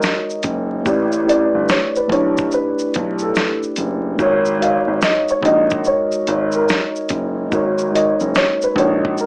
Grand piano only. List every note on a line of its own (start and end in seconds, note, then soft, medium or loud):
0.44 0.79 F#1 medium
0.86 1.42 A1 medium
1.54 1.67 G1 medium
2.10 2.45 B1 medium
2.96 3.30 B1 medium
3.78 4.12 F#1 medium
4.19 4.76 G#1 loud
4.87 5.00 G#1 medium
5.43 5.78 A#1 medium
6.28 6.62 G#1 medium
7.11 7.45 F#1 medium
7.52 8.09 G#1 medium
8.21 8.33 F#1 medium
8.76 9.11 A#1 medium